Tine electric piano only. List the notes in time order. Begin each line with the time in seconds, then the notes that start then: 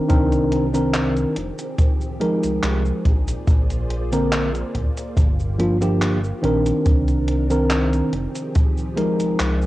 0.08 D#3 C4 D4 A#4
0.73 D#3 C4 D4 A#4
2.20 F3 G#3 D#4 A#4
4.12 D3 A#3 C4 A#4
5.58 F3 A#3 D4 F4
5.81 F3 A#3 D4 G4
6.42 D#3 C4 D4 A#4
7.50 D#3 C4 D4 A#4
8.96 F3 G#3 D#4 A#4